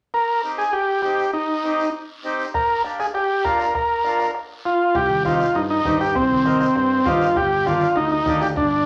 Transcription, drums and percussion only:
0.14 long guiro medium
0.44 short guiro medium
0.59 short guiro medium
0.74 long guiro medium
1.04 short guiro medium
1.19 short guiro medium
1.34 long guiro medium
1.64 short guiro medium
1.79 short guiro medium
1.95 long guiro medium
2.24 short guiro medium
2.39 short guiro medium
2.54 bombo low medium
2.54 bombo rim medium
2.54 long guiro medium
2.84 bombo rim medium
2.84 short guiro medium
2.99 bombo rim medium
2.99 short guiro medium
3.14 bombo rim medium
3.14 long guiro medium
3.45 bombo low medium
3.45 bombo rim medium
3.45 short guiro medium
3.59 bombo rim medium
3.59 short guiro medium
3.75 bombo low medium
3.75 bombo rim medium
3.75 long guiro medium
4.05 bombo rim medium
4.05 short guiro medium
4.20 bombo rim medium
4.20 short guiro medium
4.35 bombo rim medium
4.35 long guiro medium
4.95 bombo low medium
4.95 bombo rim medium
4.95 long guiro medium
5.10 high conga medium
5.25 bombo rim medium
5.25 high conga medium
5.25 short guiro medium
5.40 bombo rim medium
5.40 short guiro medium
5.55 bombo rim medium
5.55 long guiro medium
5.85 bombo low medium
5.85 bombo rim medium
5.85 high conga medium
5.85 short guiro medium
6.00 bombo rim medium
6.00 short guiro medium
6.15 bombo low medium
6.15 bombo rim medium
6.15 long guiro medium
6.31 high conga medium
6.46 bombo rim medium
6.46 high conga medium
6.46 short guiro medium
6.61 bombo rim medium
6.61 short guiro medium
6.75 bombo rim medium
6.75 long guiro medium
7.05 bombo low medium
7.05 bombo rim medium
7.05 high conga medium
7.05 short guiro medium
7.21 bombo rim medium
7.21 short guiro medium
7.36 bombo low medium
7.36 bombo rim medium
7.36 long guiro medium
7.66 bombo rim medium
7.66 high conga medium
7.66 short guiro medium
7.81 bombo rim medium
7.81 short guiro medium
7.96 bombo rim medium
7.96 long guiro medium
8.26 bombo low medium
8.26 bombo rim medium
8.26 high conga medium
8.26 short guiro medium
8.41 bombo rim medium
8.41 short guiro medium
8.56 bombo low medium
8.56 bombo rim medium
8.56 long guiro medium

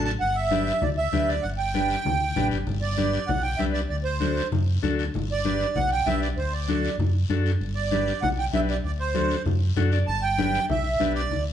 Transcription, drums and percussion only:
0.05 short guiro medium
0.21 high conga soft
0.21 long guiro medium
0.51 high conga medium
0.51 short guiro medium
0.67 short guiro medium
0.82 high conga soft
0.82 low conga medium
0.82 long guiro medium
1.13 high conga medium
1.13 low conga medium
1.13 short guiro medium
1.29 short guiro medium
1.44 high conga soft
1.44 long guiro medium
1.75 high conga medium
1.75 short guiro medium
1.90 short guiro medium
2.05 high conga soft
2.05 low conga medium
2.05 long guiro medium
2.36 high conga medium
2.36 low conga medium
2.36 short guiro medium
2.51 short guiro medium
2.67 high conga soft
2.67 low conga medium
2.67 long guiro medium
2.98 high conga medium
2.98 short guiro medium
3.13 short guiro medium
3.28 high conga soft
3.28 low conga medium
3.28 long guiro medium
3.60 high conga medium
3.60 short guiro medium
3.75 short guiro medium
3.90 high conga soft
3.90 long guiro medium
4.22 high conga medium
4.22 short guiro medium
4.37 short guiro medium
4.52 high conga soft
4.52 low conga medium
4.52 long guiro medium
4.84 high conga medium
4.84 short guiro medium
4.99 short guiro medium
5.14 high conga soft
5.14 low conga medium
5.14 long guiro medium
5.45 high conga medium
5.45 short guiro medium
5.60 short guiro medium
5.76 high conga soft
5.76 low conga medium
5.76 long guiro medium
6.07 high conga medium
6.07 short guiro medium
6.22 short guiro medium
6.37 high conga soft
6.37 long guiro medium
6.69 high conga medium
6.69 short guiro medium
6.85 short guiro medium
6.99 high conga soft
6.99 low conga medium
6.99 long guiro medium
7.30 high conga medium
7.30 short guiro medium
7.46 short guiro medium
7.61 high conga soft
7.61 long guiro medium
7.92 high conga medium
7.92 short guiro medium
8.07 short guiro medium
8.22 high conga soft
8.22 low conga medium
8.22 long guiro medium
8.53 high conga medium
8.53 short guiro medium
8.69 short guiro medium
8.84 high conga soft
8.84 long guiro medium
9.15 high conga medium
9.15 short guiro medium
9.30 short guiro medium
9.46 high conga soft
9.46 low conga medium
9.46 long guiro medium
9.76 high conga medium
9.76 low conga medium
9.76 short guiro medium
9.92 short guiro medium
10.07 high conga soft
10.07 long guiro medium
10.39 high conga medium
10.39 short guiro medium
10.54 short guiro medium
10.70 high conga soft
10.70 low conga medium
10.70 long guiro medium
11.00 high conga medium
11.00 short guiro medium
11.16 short guiro medium
11.31 high conga soft
11.31 low conga medium
11.31 long guiro medium

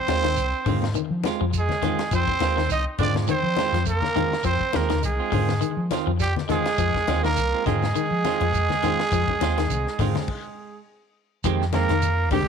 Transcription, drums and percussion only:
0.08 snare medium
0.08 closed hi-hat medium
0.08 high conga loud
0.08 shekere soft
0.24 snare medium
0.24 closed hi-hat medium
0.37 closed hi-hat medium
0.37 shekere medium
0.66 kick medium
0.66 open hi-hat medium
0.66 low conga medium
0.66 shekere soft
0.82 snare medium
0.82 high conga medium
0.94 closed hi-hat medium
0.94 high conga medium
0.94 shekere medium
1.24 snare medium
1.24 closed hi-hat medium
1.24 high conga loud
1.24 shekere soft
1.53 kick medium
1.53 closed hi-hat medium
1.53 shekere medium
1.69 snare soft
1.69 high conga medium
1.82 snare soft
1.82 closed hi-hat medium
1.82 high conga medium
1.82 low conga medium
1.82 shekere soft
1.98 snare medium
1.98 closed hi-hat medium
2.11 kick medium
2.11 closed hi-hat medium
2.11 shekere medium
2.28 kick medium
2.28 low conga medium
2.40 snare medium
2.40 closed hi-hat medium
2.40 high conga loud
2.40 shekere soft
2.58 snare medium
2.70 closed hi-hat medium
2.70 shekere medium
2.98 kick medium
2.98 closed hi-hat soft
2.98 low conga medium
2.98 shekere soft
3.15 snare medium
3.15 high conga medium
3.27 closed hi-hat medium
3.27 high conga medium
3.27 shekere medium
3.56 snare medium
3.56 closed hi-hat medium
3.56 high conga medium
3.56 shekere soft
3.74 snare soft
3.74 closed hi-hat soft
3.85 kick medium
3.85 closed hi-hat medium
3.85 shekere medium
4.02 snare soft
4.02 high conga medium
4.15 closed hi-hat soft
4.15 high conga medium
4.15 low conga medium
4.15 shekere soft
4.33 snare medium
4.43 kick loud
4.43 closed hi-hat medium
4.43 shekere medium
4.61 kick medium
4.73 snare medium
4.73 closed hi-hat medium
4.73 high conga loud
4.73 shekere soft
4.89 snare medium
4.89 closed hi-hat medium
4.89 high conga medium
5.03 closed hi-hat medium
5.03 shekere medium
5.32 kick medium
5.32 open hi-hat medium
5.32 low conga medium
5.32 shekere soft
5.49 snare medium
5.49 high conga medium
5.62 closed hi-hat medium
5.62 shekere medium
5.91 snare medium
5.91 closed hi-hat medium
5.91 high conga medium
5.91 shekere soft
6.20 kick medium
6.20 closed hi-hat medium
6.20 shekere medium
6.36 snare soft
6.36 high conga medium
6.48 snare soft
6.48 closed hi-hat medium
6.48 high conga medium
6.48 low conga medium
6.48 shekere soft
6.65 snare medium
6.65 closed hi-hat medium
6.78 kick loud
6.78 closed hi-hat medium
6.78 shekere medium
6.94 kick medium
6.94 snare soft
6.94 low conga medium
7.07 snare medium
7.07 closed hi-hat medium
7.07 high conga loud
7.07 shekere soft
7.25 snare medium
7.37 closed hi-hat medium
7.37 shekere medium
7.66 kick medium
7.66 snare soft
7.66 closed hi-hat medium
7.66 low conga medium
7.66 shekere soft
7.83 snare medium
7.83 high conga medium
7.95 closed hi-hat medium
7.95 shekere medium
8.24 snare medium
8.24 closed hi-hat soft
8.24 high conga medium
8.24 shekere soft
8.40 closed hi-hat medium
8.54 kick medium
8.54 closed hi-hat medium
8.54 shekere medium
8.69 snare soft
8.69 high conga medium
8.82 snare soft
8.82 closed hi-hat soft
8.82 low conga medium
8.82 shekere soft
9.00 snare medium
9.11 kick medium
9.11 closed hi-hat medium
9.11 shekere medium
9.28 kick medium
9.28 low conga medium
9.41 snare medium
9.41 closed hi-hat medium
9.41 high conga medium
9.41 shekere soft
9.57 snare medium
9.57 closed hi-hat soft
9.70 closed hi-hat medium
9.70 shekere medium
9.87 snare soft
9.99 kick medium
9.99 snare soft
9.99 open hi-hat medium
9.99 low conga medium
9.99 shekere soft
10.15 snare medium
10.15 high conga medium
10.28 kick medium
10.28 crash medium
11.44 kick loud
11.44 closed hi-hat medium
11.44 shekere medium
11.62 snare soft
11.73 snare medium
11.73 closed hi-hat medium
11.73 high conga medium
11.73 shekere soft
11.89 snare soft
11.89 closed hi-hat soft
12.02 closed hi-hat medium
12.02 shekere medium
12.30 kick medium
12.30 open hi-hat medium
12.30 low conga medium
12.30 shekere soft

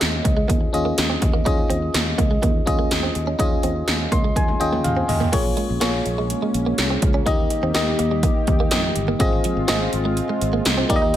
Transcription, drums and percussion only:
0.01 snare loud
0.01 closed hi-hat medium
0.25 kick medium
0.25 closed hi-hat medium
0.49 kick medium
0.49 closed hi-hat medium
0.74 closed hi-hat medium
0.98 snare loud
0.98 closed hi-hat loud
1.22 kick medium
1.22 closed hi-hat medium
1.46 kick loud
1.46 closed hi-hat medium
1.70 closed hi-hat medium
1.94 snare loud
1.94 closed hi-hat medium
2.18 kick medium
2.18 closed hi-hat medium
2.43 kick medium
2.43 closed hi-hat medium
2.67 kick medium
2.67 closed hi-hat medium
2.91 snare loud
2.91 closed hi-hat loud
3.15 closed hi-hat medium
3.39 kick loud
3.39 closed hi-hat medium
3.63 closed hi-hat medium
3.88 snare loud
3.88 closed hi-hat medium
4.12 kick medium
4.12 closed hi-hat medium
4.36 kick medium
4.36 closed hi-hat medium
4.36 high tom medium
4.49 high tom medium
4.61 closed hi-hat medium
4.73 mid tom medium
4.84 closed hi-hat loud
4.84 mid tom medium
5.09 floor tom medium
5.09 open hi-hat medium
5.21 floor tom medium
5.33 kick loud
5.33 closed hi-hat medium
5.33 crash medium
5.57 closed hi-hat medium
5.81 snare loud
5.81 closed hi-hat medium
6.06 closed hi-hat medium
6.30 closed hi-hat medium
6.54 closed hi-hat medium
6.78 snare loud
6.78 closed hi-hat loud
7.02 kick medium
7.02 closed hi-hat medium
7.26 kick loud
7.26 closed hi-hat medium
7.50 closed hi-hat medium
7.75 snare loud
7.75 closed hi-hat medium
7.99 closed hi-hat medium
8.23 kick medium
8.23 closed hi-hat medium
8.47 kick medium
8.47 closed hi-hat medium
8.71 snare loud
8.71 closed hi-hat loud
8.96 closed hi-hat medium
9.20 kick loud
9.20 closed hi-hat medium
9.44 closed hi-hat medium
9.68 snare loud
9.68 closed hi-hat medium
9.93 closed hi-hat medium
10.17 closed hi-hat medium
10.41 closed hi-hat medium
10.65 snare loud
10.65 closed hi-hat loud
10.90 kick medium
10.90 closed hi-hat medium

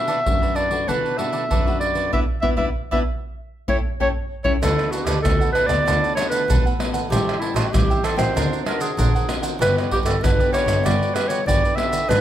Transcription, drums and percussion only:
0.08 pandeiro medium
0.26 pandeiro medium
0.26 surdo medium
0.43 pandeiro soft
0.56 pandeiro medium
0.71 pandeiro medium
0.89 pandeiro medium
0.89 surdo medium
1.06 pandeiro soft
1.19 pandeiro medium
1.33 pandeiro soft
1.51 pandeiro medium
1.51 surdo medium
1.68 pandeiro soft
1.81 pandeiro medium
1.95 pandeiro soft
2.13 surdo medium
2.43 surdo medium
2.57 surdo medium
2.92 surdo medium
3.68 surdo medium
4.00 surdo medium
4.45 surdo medium
4.63 pandeiro medium
4.63 tamborim medium
4.63 maracas medium
4.63 surdo medium
4.79 pandeiro soft
4.79 tamborim medium
4.79 maracas soft
4.93 pandeiro medium
4.93 maracas medium
5.07 pandeiro medium
5.07 tamborim medium
5.07 maracas medium
5.25 pandeiro medium
5.25 tamborim medium
5.25 maracas medium
5.25 surdo medium
5.41 pandeiro soft
5.41 maracas soft
5.55 pandeiro medium
5.55 tamborim medium
5.69 pandeiro medium
5.69 tamborim medium
5.69 maracas medium
5.88 pandeiro medium
5.88 tamborim medium
5.88 maracas medium
5.88 surdo medium
6.04 pandeiro soft
6.04 maracas soft
6.17 pandeiro medium
6.17 tamborim medium
6.17 maracas medium
6.32 pandeiro medium
6.32 maracas medium
6.50 pandeiro medium
6.50 maracas medium
6.50 surdo loud
6.67 pandeiro soft
6.67 maracas soft
6.80 pandeiro medium
6.80 tamborim medium
6.94 pandeiro medium
6.94 maracas medium
7.12 pandeiro medium
7.12 tamborim medium
7.12 maracas medium
7.12 surdo medium
7.29 pandeiro soft
7.29 tamborim medium
7.29 maracas soft
7.42 pandeiro medium
7.56 pandeiro medium
7.56 tamborim medium
7.56 maracas medium
7.74 pandeiro medium
7.74 tamborim medium
7.74 maracas medium
7.74 surdo loud
7.91 pandeiro soft
7.91 maracas soft
8.04 pandeiro medium
8.04 tamborim medium
8.04 maracas medium
8.19 pandeiro medium
8.19 tamborim medium
8.19 maracas medium
8.37 pandeiro medium
8.37 tamborim medium
8.37 maracas medium
8.37 surdo medium
8.53 pandeiro soft
8.53 maracas soft
8.66 pandeiro medium
8.66 tamborim medium
8.81 pandeiro medium
8.81 maracas medium
8.99 pandeiro medium
8.99 maracas medium
8.99 surdo medium
9.16 pandeiro soft
9.16 maracas soft
9.29 pandeiro medium
9.29 tamborim medium
9.29 maracas medium
9.43 pandeiro medium
9.43 maracas medium
9.62 pandeiro medium
9.62 tamborim medium
9.62 maracas medium
9.62 surdo medium
9.78 pandeiro soft
9.78 tamborim medium
9.78 maracas soft
9.91 pandeiro medium
9.91 surdo medium
10.06 pandeiro medium
10.06 tamborim medium
10.06 maracas medium
10.24 pandeiro medium
10.24 tamborim medium
10.24 maracas medium
10.24 surdo loud
10.40 pandeiro soft
10.40 maracas soft
10.54 pandeiro medium
10.54 tamborim medium
10.54 maracas medium
10.68 pandeiro medium
10.68 tamborim medium
10.68 maracas medium
10.86 pandeiro medium
10.86 tamborim medium
10.86 maracas medium
10.86 surdo medium
11.03 pandeiro soft
11.03 maracas soft
11.16 pandeiro medium
11.16 tamborim medium
11.16 maracas medium
11.30 pandeiro medium
11.30 maracas medium
11.48 pandeiro medium
11.48 maracas medium
11.48 surdo medium
11.65 pandeiro soft
11.65 maracas soft
11.78 pandeiro medium
11.78 tamborim medium
11.93 pandeiro medium
11.93 maracas medium
12.11 pandeiro medium
12.11 tamborim medium
12.11 maracas medium
12.11 surdo medium

